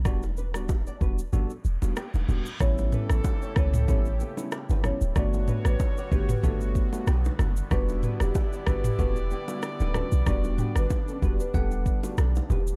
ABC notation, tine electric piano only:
X:1
M:4/4
L:1/16
Q:"Swing 16ths" 1/4=94
K:Edor
V:1 name="Tine electric piano"
[G,B,DF] z2 [G,B,DF] z2 [G,B,DF] z [G,B,DF] z2 [G,B,DF] z2 [G,B,DF] z | [G,B,CE]4 z2 [G,B,CE] z [G,B,CE] z2 [G,B,CE] z2 [G,B,CE] z | [A,B,DF]4 z2 [A,B,DF] z [A,B,DF]3 [A,B,DF] z4 | [G,B,DF]4 z2 [G,B,DF] z [G,B,DF] z2 [G,B,DF] z2 [G,B,DF] z |
[G,B,DF]4 z2 [G,B,DF] z [G,B,Df]3 [G,B,DF] z4 |]